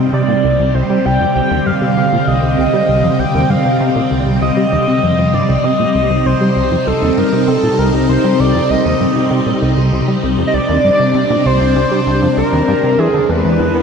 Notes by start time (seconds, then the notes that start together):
Already playing: C3 G3 C4 D#4
0.13 C3 D5
0.28 A#2
0.44 C2
0.59 C2
0.74 C2 D3 C5
0.90 G3
1.05 C2 G5
1.21 F2
1.35 C2 G5
1.51 D#2
1.66 G2 F5
1.81 C3
1.97 C3
2.12 A#2
2.27 C2 D#5
2.43 C2
2.58 C2
2.73 G3
2.88 C2
3.04 F2
3.19 C2 G5
3.34 D#2
3.50 G2 F5
3.65 C3
3.80 C3
3.96 A#2
4.11 C2
4.26 C2
4.42 C2 D#5
4.57 G3
4.72 D#2
4.87 C3
5.03 F2
5.18 F2
5.34 G2 D5
5.49 C2
5.64 C3 D#4 D#5
5.79 A#2
5.95 C2
6.10 C2
6.26 C2 C5
6.41 G3
6.56 C2
6.71 F2
6.87 C2 A4
7.02 D#2
7.17 G2 A#4
7.33 C3
7.48 C3 A4
7.63 A#2
7.78 C2 A#4
7.94 C2
8.09 C2 C5
8.24 G3
8.39 C2 D5
8.55 F2
8.70 C2 D#5
8.85 D#2
9.00 G2
9.16 C3
9.31 C3
9.46 A#2
9.62 C2
9.77 C2
9.92 C2
10.08 G3
10.23 C2
10.38 F2
10.47 D#5
10.54 C2 D4 D5
10.69 D#2
10.84 G2
11.00 C3
11.14 C3
11.30 A#2
11.45 C2 C5
11.60 C2
11.76 C2
11.91 G3
12.07 C2
12.22 F2
12.37 C2 A#4
12.53 D#2
12.68 G2
12.83 C3
12.99 E2 E3 G#3 D4 G#4
13.14 D3
13.29 E2 B4
13.45 E2
13.60 E2
13.75 B3